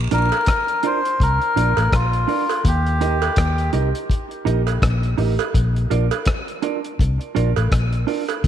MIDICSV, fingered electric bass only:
0, 0, Header, 1, 2, 480
1, 0, Start_track
1, 0, Key_signature, -2, "major"
1, 0, Tempo, 723764
1, 1756, Time_signature, 4, 2, 24, 8
1, 5620, End_track
2, 0, Start_track
2, 0, Title_t, "Fingered electric bass"
2, 0, Program_c, 0, 33
2, 78, Note_on_c, 0, 34, 96
2, 195, Note_off_c, 0, 34, 0
2, 799, Note_on_c, 0, 36, 87
2, 916, Note_off_c, 0, 36, 0
2, 1038, Note_on_c, 0, 34, 84
2, 1155, Note_off_c, 0, 34, 0
2, 1175, Note_on_c, 0, 33, 90
2, 1264, Note_off_c, 0, 33, 0
2, 1278, Note_on_c, 0, 34, 84
2, 1486, Note_off_c, 0, 34, 0
2, 1758, Note_on_c, 0, 39, 115
2, 2175, Note_off_c, 0, 39, 0
2, 2237, Note_on_c, 0, 39, 95
2, 2446, Note_off_c, 0, 39, 0
2, 2477, Note_on_c, 0, 36, 77
2, 2595, Note_off_c, 0, 36, 0
2, 2958, Note_on_c, 0, 34, 81
2, 3166, Note_off_c, 0, 34, 0
2, 3197, Note_on_c, 0, 34, 91
2, 3406, Note_off_c, 0, 34, 0
2, 3437, Note_on_c, 0, 33, 77
2, 3555, Note_off_c, 0, 33, 0
2, 3679, Note_on_c, 0, 34, 96
2, 3887, Note_off_c, 0, 34, 0
2, 3920, Note_on_c, 0, 34, 91
2, 4037, Note_off_c, 0, 34, 0
2, 4641, Note_on_c, 0, 36, 81
2, 4757, Note_off_c, 0, 36, 0
2, 4884, Note_on_c, 0, 34, 82
2, 4999, Note_off_c, 0, 34, 0
2, 5020, Note_on_c, 0, 33, 86
2, 5108, Note_off_c, 0, 33, 0
2, 5120, Note_on_c, 0, 34, 80
2, 5328, Note_off_c, 0, 34, 0
2, 5599, Note_on_c, 0, 39, 97
2, 5620, Note_off_c, 0, 39, 0
2, 5620, End_track
0, 0, End_of_file